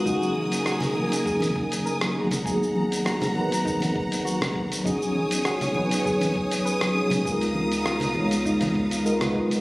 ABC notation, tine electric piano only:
X:1
M:4/4
L:1/16
Q:1/4=100
K:F#
V:1 name="Tine electric piano"
[F,A,CDG]6 [F,A,CDA]8 [F,A,B,DG] z | [F,A,B,DG]6 [F,B,DAB]8- [F,B,DAB]2 | [F,B,CDG]6 [F,B,CDB]8 [F,B,CDG] z | [G,B,DEA]6 [G,B,DEc]6 [G,B,DEA] [G,B,DEB]3 |]